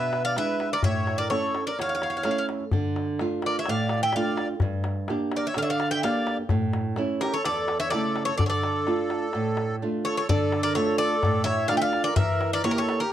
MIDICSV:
0, 0, Header, 1, 5, 480
1, 0, Start_track
1, 0, Key_signature, -1, "minor"
1, 0, Tempo, 472441
1, 853, Time_signature, 4, 2, 24, 8
1, 13338, End_track
2, 0, Start_track
2, 0, Title_t, "Bouzouki"
2, 0, Program_c, 0, 25
2, 0, Note_on_c, 0, 76, 86
2, 225, Note_off_c, 0, 76, 0
2, 251, Note_on_c, 0, 77, 94
2, 364, Note_off_c, 0, 77, 0
2, 384, Note_on_c, 0, 76, 91
2, 738, Note_off_c, 0, 76, 0
2, 742, Note_on_c, 0, 74, 84
2, 849, Note_off_c, 0, 74, 0
2, 853, Note_on_c, 0, 76, 90
2, 1195, Note_off_c, 0, 76, 0
2, 1199, Note_on_c, 0, 74, 86
2, 1316, Note_off_c, 0, 74, 0
2, 1320, Note_on_c, 0, 73, 76
2, 1661, Note_off_c, 0, 73, 0
2, 1696, Note_on_c, 0, 74, 74
2, 1806, Note_off_c, 0, 74, 0
2, 1843, Note_on_c, 0, 77, 74
2, 1900, Note_off_c, 0, 77, 0
2, 1921, Note_on_c, 0, 77, 49
2, 1966, Note_off_c, 0, 77, 0
2, 1978, Note_on_c, 0, 77, 57
2, 2043, Note_off_c, 0, 77, 0
2, 2063, Note_on_c, 0, 77, 44
2, 2121, Note_off_c, 0, 77, 0
2, 2133, Note_on_c, 0, 77, 49
2, 2190, Note_off_c, 0, 77, 0
2, 2202, Note_on_c, 0, 77, 48
2, 2257, Note_off_c, 0, 77, 0
2, 2269, Note_on_c, 0, 77, 56
2, 2333, Note_off_c, 0, 77, 0
2, 2345, Note_on_c, 0, 77, 51
2, 2409, Note_off_c, 0, 77, 0
2, 2421, Note_on_c, 0, 77, 61
2, 2491, Note_off_c, 0, 77, 0
2, 3518, Note_on_c, 0, 74, 71
2, 3619, Note_off_c, 0, 74, 0
2, 3647, Note_on_c, 0, 76, 75
2, 3748, Note_off_c, 0, 76, 0
2, 3752, Note_on_c, 0, 77, 77
2, 4080, Note_off_c, 0, 77, 0
2, 4094, Note_on_c, 0, 79, 93
2, 4219, Note_off_c, 0, 79, 0
2, 4225, Note_on_c, 0, 77, 80
2, 4556, Note_off_c, 0, 77, 0
2, 5450, Note_on_c, 0, 74, 69
2, 5546, Note_off_c, 0, 74, 0
2, 5555, Note_on_c, 0, 76, 75
2, 5664, Note_off_c, 0, 76, 0
2, 5668, Note_on_c, 0, 77, 81
2, 5711, Note_off_c, 0, 77, 0
2, 5715, Note_on_c, 0, 76, 73
2, 5787, Note_off_c, 0, 76, 0
2, 5791, Note_on_c, 0, 77, 78
2, 5998, Note_off_c, 0, 77, 0
2, 6005, Note_on_c, 0, 79, 93
2, 6126, Note_off_c, 0, 79, 0
2, 6130, Note_on_c, 0, 77, 84
2, 6468, Note_off_c, 0, 77, 0
2, 7324, Note_on_c, 0, 70, 78
2, 7454, Note_on_c, 0, 73, 84
2, 7455, Note_off_c, 0, 70, 0
2, 7567, Note_off_c, 0, 73, 0
2, 7573, Note_on_c, 0, 74, 90
2, 7910, Note_off_c, 0, 74, 0
2, 7921, Note_on_c, 0, 76, 94
2, 8026, Note_off_c, 0, 76, 0
2, 8030, Note_on_c, 0, 74, 91
2, 8380, Note_off_c, 0, 74, 0
2, 8384, Note_on_c, 0, 73, 84
2, 8505, Note_off_c, 0, 73, 0
2, 8509, Note_on_c, 0, 74, 81
2, 8589, Note_off_c, 0, 74, 0
2, 8596, Note_on_c, 0, 73, 67
2, 8628, Note_off_c, 0, 73, 0
2, 8632, Note_on_c, 0, 74, 85
2, 9914, Note_off_c, 0, 74, 0
2, 10208, Note_on_c, 0, 73, 76
2, 10325, Note_off_c, 0, 73, 0
2, 10336, Note_on_c, 0, 73, 75
2, 10453, Note_off_c, 0, 73, 0
2, 10457, Note_on_c, 0, 74, 79
2, 10789, Note_off_c, 0, 74, 0
2, 10801, Note_on_c, 0, 74, 91
2, 10918, Note_off_c, 0, 74, 0
2, 10922, Note_on_c, 0, 73, 80
2, 11153, Note_off_c, 0, 73, 0
2, 11158, Note_on_c, 0, 74, 95
2, 11614, Note_off_c, 0, 74, 0
2, 11623, Note_on_c, 0, 76, 94
2, 11864, Note_off_c, 0, 76, 0
2, 11868, Note_on_c, 0, 77, 93
2, 11955, Note_off_c, 0, 77, 0
2, 11959, Note_on_c, 0, 79, 80
2, 12000, Note_off_c, 0, 79, 0
2, 12004, Note_on_c, 0, 77, 101
2, 12228, Note_off_c, 0, 77, 0
2, 12232, Note_on_c, 0, 74, 94
2, 12351, Note_off_c, 0, 74, 0
2, 12355, Note_on_c, 0, 76, 94
2, 12730, Note_off_c, 0, 76, 0
2, 12734, Note_on_c, 0, 74, 94
2, 12839, Note_off_c, 0, 74, 0
2, 12843, Note_on_c, 0, 73, 91
2, 12915, Note_off_c, 0, 73, 0
2, 12915, Note_on_c, 0, 70, 69
2, 12986, Note_on_c, 0, 73, 84
2, 12991, Note_off_c, 0, 70, 0
2, 13195, Note_off_c, 0, 73, 0
2, 13210, Note_on_c, 0, 70, 74
2, 13330, Note_off_c, 0, 70, 0
2, 13338, End_track
3, 0, Start_track
3, 0, Title_t, "Accordion"
3, 0, Program_c, 1, 21
3, 0, Note_on_c, 1, 71, 83
3, 229, Note_off_c, 1, 71, 0
3, 259, Note_on_c, 1, 74, 75
3, 368, Note_off_c, 1, 74, 0
3, 374, Note_on_c, 1, 71, 82
3, 709, Note_off_c, 1, 71, 0
3, 744, Note_on_c, 1, 70, 72
3, 850, Note_off_c, 1, 70, 0
3, 855, Note_on_c, 1, 73, 83
3, 1189, Note_off_c, 1, 73, 0
3, 1211, Note_on_c, 1, 70, 63
3, 1324, Note_off_c, 1, 70, 0
3, 1327, Note_on_c, 1, 69, 67
3, 1665, Note_off_c, 1, 69, 0
3, 1694, Note_on_c, 1, 70, 63
3, 1805, Note_off_c, 1, 70, 0
3, 1815, Note_on_c, 1, 73, 68
3, 2494, Note_off_c, 1, 73, 0
3, 3516, Note_on_c, 1, 70, 61
3, 3618, Note_off_c, 1, 70, 0
3, 3635, Note_on_c, 1, 73, 62
3, 3737, Note_off_c, 1, 73, 0
3, 3742, Note_on_c, 1, 74, 72
3, 4074, Note_off_c, 1, 74, 0
3, 4101, Note_on_c, 1, 76, 74
3, 4211, Note_off_c, 1, 76, 0
3, 4218, Note_on_c, 1, 74, 73
3, 4552, Note_off_c, 1, 74, 0
3, 5450, Note_on_c, 1, 70, 65
3, 5546, Note_off_c, 1, 70, 0
3, 5563, Note_on_c, 1, 73, 67
3, 5663, Note_off_c, 1, 73, 0
3, 5693, Note_on_c, 1, 74, 76
3, 5730, Note_on_c, 1, 73, 63
3, 5742, Note_off_c, 1, 74, 0
3, 5795, Note_off_c, 1, 73, 0
3, 5833, Note_on_c, 1, 74, 77
3, 6021, Note_off_c, 1, 74, 0
3, 6033, Note_on_c, 1, 76, 73
3, 6137, Note_off_c, 1, 76, 0
3, 6139, Note_on_c, 1, 74, 73
3, 6474, Note_off_c, 1, 74, 0
3, 7333, Note_on_c, 1, 67, 73
3, 7447, Note_off_c, 1, 67, 0
3, 7452, Note_on_c, 1, 69, 70
3, 7537, Note_off_c, 1, 69, 0
3, 7553, Note_on_c, 1, 69, 82
3, 7900, Note_off_c, 1, 69, 0
3, 7913, Note_on_c, 1, 73, 75
3, 8020, Note_on_c, 1, 69, 79
3, 8036, Note_off_c, 1, 73, 0
3, 8364, Note_off_c, 1, 69, 0
3, 8380, Note_on_c, 1, 69, 75
3, 8480, Note_off_c, 1, 69, 0
3, 8496, Note_on_c, 1, 69, 76
3, 8581, Note_off_c, 1, 69, 0
3, 8606, Note_on_c, 1, 69, 83
3, 9915, Note_off_c, 1, 69, 0
3, 10214, Note_on_c, 1, 69, 63
3, 10324, Note_off_c, 1, 69, 0
3, 10340, Note_on_c, 1, 69, 70
3, 10430, Note_off_c, 1, 69, 0
3, 10445, Note_on_c, 1, 69, 76
3, 10786, Note_off_c, 1, 69, 0
3, 10804, Note_on_c, 1, 70, 74
3, 10922, Note_off_c, 1, 70, 0
3, 10937, Note_on_c, 1, 69, 73
3, 11139, Note_off_c, 1, 69, 0
3, 11154, Note_on_c, 1, 69, 84
3, 11611, Note_off_c, 1, 69, 0
3, 11628, Note_on_c, 1, 73, 83
3, 11865, Note_off_c, 1, 73, 0
3, 11873, Note_on_c, 1, 74, 84
3, 11950, Note_off_c, 1, 74, 0
3, 11957, Note_on_c, 1, 76, 69
3, 12016, Note_on_c, 1, 74, 77
3, 12028, Note_off_c, 1, 76, 0
3, 12230, Note_off_c, 1, 74, 0
3, 12238, Note_on_c, 1, 70, 78
3, 12355, Note_off_c, 1, 70, 0
3, 12371, Note_on_c, 1, 70, 83
3, 12708, Note_off_c, 1, 70, 0
3, 12738, Note_on_c, 1, 70, 76
3, 12849, Note_off_c, 1, 70, 0
3, 12866, Note_on_c, 1, 70, 76
3, 12927, Note_off_c, 1, 70, 0
3, 12954, Note_on_c, 1, 67, 67
3, 13007, Note_off_c, 1, 67, 0
3, 13012, Note_on_c, 1, 69, 79
3, 13209, Note_off_c, 1, 69, 0
3, 13221, Note_on_c, 1, 67, 66
3, 13330, Note_off_c, 1, 67, 0
3, 13338, End_track
4, 0, Start_track
4, 0, Title_t, "Nylon-string guitar"
4, 0, Program_c, 2, 24
4, 0, Note_on_c, 2, 47, 61
4, 362, Note_off_c, 2, 47, 0
4, 372, Note_on_c, 2, 56, 46
4, 377, Note_on_c, 2, 62, 44
4, 379, Note_on_c, 2, 64, 54
4, 757, Note_off_c, 2, 56, 0
4, 760, Note_off_c, 2, 62, 0
4, 760, Note_off_c, 2, 64, 0
4, 854, Note_on_c, 2, 45, 65
4, 1319, Note_off_c, 2, 45, 0
4, 1325, Note_on_c, 2, 57, 46
4, 1332, Note_on_c, 2, 61, 43
4, 1336, Note_on_c, 2, 64, 53
4, 1713, Note_off_c, 2, 57, 0
4, 1717, Note_off_c, 2, 61, 0
4, 1718, Note_off_c, 2, 64, 0
4, 1814, Note_on_c, 2, 40, 58
4, 2280, Note_off_c, 2, 40, 0
4, 2284, Note_on_c, 2, 57, 46
4, 2289, Note_on_c, 2, 61, 44
4, 2295, Note_on_c, 2, 64, 53
4, 2673, Note_off_c, 2, 57, 0
4, 2676, Note_off_c, 2, 61, 0
4, 2678, Note_off_c, 2, 64, 0
4, 2771, Note_on_c, 2, 50, 65
4, 3239, Note_off_c, 2, 50, 0
4, 3254, Note_on_c, 2, 57, 48
4, 3258, Note_on_c, 2, 62, 44
4, 3264, Note_on_c, 2, 65, 56
4, 3640, Note_off_c, 2, 57, 0
4, 3640, Note_off_c, 2, 62, 0
4, 3642, Note_off_c, 2, 65, 0
4, 3742, Note_on_c, 2, 45, 64
4, 4205, Note_off_c, 2, 45, 0
4, 4224, Note_on_c, 2, 57, 46
4, 4230, Note_on_c, 2, 62, 46
4, 4235, Note_on_c, 2, 65, 53
4, 4605, Note_off_c, 2, 57, 0
4, 4608, Note_off_c, 2, 62, 0
4, 4612, Note_off_c, 2, 65, 0
4, 4692, Note_on_c, 2, 43, 62
4, 5160, Note_off_c, 2, 43, 0
4, 5175, Note_on_c, 2, 58, 49
4, 5181, Note_on_c, 2, 62, 43
4, 5184, Note_on_c, 2, 67, 54
4, 5560, Note_off_c, 2, 58, 0
4, 5564, Note_off_c, 2, 67, 0
4, 5565, Note_off_c, 2, 62, 0
4, 5655, Note_on_c, 2, 50, 66
4, 6122, Note_off_c, 2, 50, 0
4, 6135, Note_on_c, 2, 58, 47
4, 6139, Note_on_c, 2, 62, 41
4, 6145, Note_on_c, 2, 67, 52
4, 6520, Note_off_c, 2, 58, 0
4, 6523, Note_off_c, 2, 62, 0
4, 6526, Note_off_c, 2, 67, 0
4, 6606, Note_on_c, 2, 45, 67
4, 7078, Note_off_c, 2, 45, 0
4, 7083, Note_on_c, 2, 57, 49
4, 7088, Note_on_c, 2, 61, 47
4, 7094, Note_on_c, 2, 64, 51
4, 7473, Note_off_c, 2, 57, 0
4, 7477, Note_off_c, 2, 61, 0
4, 7478, Note_off_c, 2, 64, 0
4, 7577, Note_on_c, 2, 40, 64
4, 8043, Note_off_c, 2, 40, 0
4, 8059, Note_on_c, 2, 49, 44
4, 8061, Note_on_c, 2, 57, 50
4, 8064, Note_on_c, 2, 64, 54
4, 8442, Note_off_c, 2, 57, 0
4, 8444, Note_off_c, 2, 49, 0
4, 8446, Note_off_c, 2, 64, 0
4, 8530, Note_on_c, 2, 50, 61
4, 9000, Note_off_c, 2, 50, 0
4, 9007, Note_on_c, 2, 57, 50
4, 9014, Note_on_c, 2, 62, 42
4, 9019, Note_on_c, 2, 65, 52
4, 9396, Note_off_c, 2, 57, 0
4, 9400, Note_off_c, 2, 62, 0
4, 9403, Note_off_c, 2, 65, 0
4, 9496, Note_on_c, 2, 45, 61
4, 9963, Note_off_c, 2, 45, 0
4, 9978, Note_on_c, 2, 57, 47
4, 9982, Note_on_c, 2, 62, 41
4, 9987, Note_on_c, 2, 65, 50
4, 10363, Note_off_c, 2, 57, 0
4, 10363, Note_off_c, 2, 62, 0
4, 10368, Note_off_c, 2, 65, 0
4, 10462, Note_on_c, 2, 50, 65
4, 10925, Note_off_c, 2, 50, 0
4, 10933, Note_on_c, 2, 57, 48
4, 10939, Note_on_c, 2, 62, 47
4, 10942, Note_on_c, 2, 65, 56
4, 11320, Note_off_c, 2, 57, 0
4, 11322, Note_off_c, 2, 62, 0
4, 11322, Note_off_c, 2, 65, 0
4, 11426, Note_on_c, 2, 45, 65
4, 11887, Note_off_c, 2, 45, 0
4, 11896, Note_on_c, 2, 57, 48
4, 11900, Note_on_c, 2, 62, 45
4, 11905, Note_on_c, 2, 65, 54
4, 12281, Note_off_c, 2, 57, 0
4, 12282, Note_off_c, 2, 62, 0
4, 12286, Note_off_c, 2, 65, 0
4, 12375, Note_on_c, 2, 52, 64
4, 12841, Note_off_c, 2, 52, 0
4, 12845, Note_on_c, 2, 58, 52
4, 12851, Note_on_c, 2, 67, 54
4, 12852, Note_on_c, 2, 64, 44
4, 13234, Note_off_c, 2, 58, 0
4, 13235, Note_off_c, 2, 67, 0
4, 13238, Note_off_c, 2, 64, 0
4, 13338, End_track
5, 0, Start_track
5, 0, Title_t, "Darbuka"
5, 12, Note_on_c, 9, 63, 23
5, 114, Note_off_c, 9, 63, 0
5, 130, Note_on_c, 9, 63, 66
5, 232, Note_off_c, 9, 63, 0
5, 251, Note_on_c, 9, 63, 23
5, 352, Note_off_c, 9, 63, 0
5, 371, Note_on_c, 9, 63, 68
5, 473, Note_off_c, 9, 63, 0
5, 610, Note_on_c, 9, 63, 67
5, 711, Note_off_c, 9, 63, 0
5, 729, Note_on_c, 9, 63, 23
5, 830, Note_off_c, 9, 63, 0
5, 840, Note_on_c, 9, 64, 76
5, 941, Note_off_c, 9, 64, 0
5, 1089, Note_on_c, 9, 63, 60
5, 1191, Note_off_c, 9, 63, 0
5, 1210, Note_on_c, 9, 63, 24
5, 1312, Note_off_c, 9, 63, 0
5, 1326, Note_on_c, 9, 63, 68
5, 1428, Note_off_c, 9, 63, 0
5, 1570, Note_on_c, 9, 63, 65
5, 1672, Note_off_c, 9, 63, 0
5, 1823, Note_on_c, 9, 63, 63
5, 1925, Note_off_c, 9, 63, 0
5, 1934, Note_on_c, 9, 63, 23
5, 2036, Note_off_c, 9, 63, 0
5, 2050, Note_on_c, 9, 63, 65
5, 2151, Note_off_c, 9, 63, 0
5, 2286, Note_on_c, 9, 63, 65
5, 2387, Note_off_c, 9, 63, 0
5, 2527, Note_on_c, 9, 63, 60
5, 2629, Note_off_c, 9, 63, 0
5, 2645, Note_on_c, 9, 63, 22
5, 2747, Note_off_c, 9, 63, 0
5, 2758, Note_on_c, 9, 64, 75
5, 2860, Note_off_c, 9, 64, 0
5, 2894, Note_on_c, 9, 63, 22
5, 2995, Note_off_c, 9, 63, 0
5, 3009, Note_on_c, 9, 63, 59
5, 3111, Note_off_c, 9, 63, 0
5, 3245, Note_on_c, 9, 63, 68
5, 3347, Note_off_c, 9, 63, 0
5, 3362, Note_on_c, 9, 63, 25
5, 3463, Note_off_c, 9, 63, 0
5, 3478, Note_on_c, 9, 63, 64
5, 3579, Note_off_c, 9, 63, 0
5, 3714, Note_on_c, 9, 63, 70
5, 3815, Note_off_c, 9, 63, 0
5, 3839, Note_on_c, 9, 63, 26
5, 3941, Note_off_c, 9, 63, 0
5, 3956, Note_on_c, 9, 63, 74
5, 4057, Note_off_c, 9, 63, 0
5, 4076, Note_on_c, 9, 63, 27
5, 4177, Note_off_c, 9, 63, 0
5, 4191, Note_on_c, 9, 63, 75
5, 4293, Note_off_c, 9, 63, 0
5, 4444, Note_on_c, 9, 63, 69
5, 4546, Note_off_c, 9, 63, 0
5, 4556, Note_on_c, 9, 63, 27
5, 4658, Note_off_c, 9, 63, 0
5, 4672, Note_on_c, 9, 64, 84
5, 4774, Note_off_c, 9, 64, 0
5, 4808, Note_on_c, 9, 63, 25
5, 4910, Note_off_c, 9, 63, 0
5, 4916, Note_on_c, 9, 63, 73
5, 5018, Note_off_c, 9, 63, 0
5, 5161, Note_on_c, 9, 63, 69
5, 5263, Note_off_c, 9, 63, 0
5, 5284, Note_on_c, 9, 63, 28
5, 5385, Note_off_c, 9, 63, 0
5, 5401, Note_on_c, 9, 63, 73
5, 5502, Note_off_c, 9, 63, 0
5, 5632, Note_on_c, 9, 63, 72
5, 5734, Note_off_c, 9, 63, 0
5, 5768, Note_on_c, 9, 63, 27
5, 5870, Note_off_c, 9, 63, 0
5, 5890, Note_on_c, 9, 63, 73
5, 5992, Note_off_c, 9, 63, 0
5, 6003, Note_on_c, 9, 63, 28
5, 6105, Note_off_c, 9, 63, 0
5, 6138, Note_on_c, 9, 63, 77
5, 6239, Note_off_c, 9, 63, 0
5, 6369, Note_on_c, 9, 63, 72
5, 6470, Note_off_c, 9, 63, 0
5, 6484, Note_on_c, 9, 63, 28
5, 6585, Note_off_c, 9, 63, 0
5, 6596, Note_on_c, 9, 64, 84
5, 6697, Note_off_c, 9, 64, 0
5, 6722, Note_on_c, 9, 63, 26
5, 6824, Note_off_c, 9, 63, 0
5, 6842, Note_on_c, 9, 63, 69
5, 6944, Note_off_c, 9, 63, 0
5, 7075, Note_on_c, 9, 63, 71
5, 7176, Note_off_c, 9, 63, 0
5, 7205, Note_on_c, 9, 63, 24
5, 7307, Note_off_c, 9, 63, 0
5, 7324, Note_on_c, 9, 63, 70
5, 7426, Note_off_c, 9, 63, 0
5, 7564, Note_on_c, 9, 63, 69
5, 7666, Note_off_c, 9, 63, 0
5, 7680, Note_on_c, 9, 63, 26
5, 7782, Note_off_c, 9, 63, 0
5, 7803, Note_on_c, 9, 63, 74
5, 7905, Note_off_c, 9, 63, 0
5, 7924, Note_on_c, 9, 63, 27
5, 8026, Note_off_c, 9, 63, 0
5, 8044, Note_on_c, 9, 63, 70
5, 8146, Note_off_c, 9, 63, 0
5, 8286, Note_on_c, 9, 63, 67
5, 8388, Note_off_c, 9, 63, 0
5, 8414, Note_on_c, 9, 63, 27
5, 8516, Note_off_c, 9, 63, 0
5, 8526, Note_on_c, 9, 64, 80
5, 8628, Note_off_c, 9, 64, 0
5, 8659, Note_on_c, 9, 63, 25
5, 8760, Note_off_c, 9, 63, 0
5, 8772, Note_on_c, 9, 63, 68
5, 8873, Note_off_c, 9, 63, 0
5, 9011, Note_on_c, 9, 63, 64
5, 9113, Note_off_c, 9, 63, 0
5, 9129, Note_on_c, 9, 63, 24
5, 9231, Note_off_c, 9, 63, 0
5, 9246, Note_on_c, 9, 63, 65
5, 9348, Note_off_c, 9, 63, 0
5, 9480, Note_on_c, 9, 63, 64
5, 9581, Note_off_c, 9, 63, 0
5, 9609, Note_on_c, 9, 63, 25
5, 9711, Note_off_c, 9, 63, 0
5, 9724, Note_on_c, 9, 63, 65
5, 9825, Note_off_c, 9, 63, 0
5, 9852, Note_on_c, 9, 63, 23
5, 9953, Note_off_c, 9, 63, 0
5, 10458, Note_on_c, 9, 64, 77
5, 10559, Note_off_c, 9, 64, 0
5, 10692, Note_on_c, 9, 63, 70
5, 10793, Note_off_c, 9, 63, 0
5, 10924, Note_on_c, 9, 63, 71
5, 11026, Note_off_c, 9, 63, 0
5, 11039, Note_on_c, 9, 63, 24
5, 11141, Note_off_c, 9, 63, 0
5, 11407, Note_on_c, 9, 63, 63
5, 11407, Note_on_c, 9, 64, 58
5, 11509, Note_off_c, 9, 63, 0
5, 11509, Note_off_c, 9, 64, 0
5, 11642, Note_on_c, 9, 63, 65
5, 11744, Note_off_c, 9, 63, 0
5, 11881, Note_on_c, 9, 63, 72
5, 11982, Note_off_c, 9, 63, 0
5, 12005, Note_on_c, 9, 63, 24
5, 12106, Note_off_c, 9, 63, 0
5, 12119, Note_on_c, 9, 63, 61
5, 12221, Note_off_c, 9, 63, 0
5, 12357, Note_on_c, 9, 64, 81
5, 12459, Note_off_c, 9, 64, 0
5, 12605, Note_on_c, 9, 63, 67
5, 12707, Note_off_c, 9, 63, 0
5, 12849, Note_on_c, 9, 63, 65
5, 12950, Note_off_c, 9, 63, 0
5, 12975, Note_on_c, 9, 63, 24
5, 13076, Note_off_c, 9, 63, 0
5, 13093, Note_on_c, 9, 63, 71
5, 13194, Note_off_c, 9, 63, 0
5, 13338, End_track
0, 0, End_of_file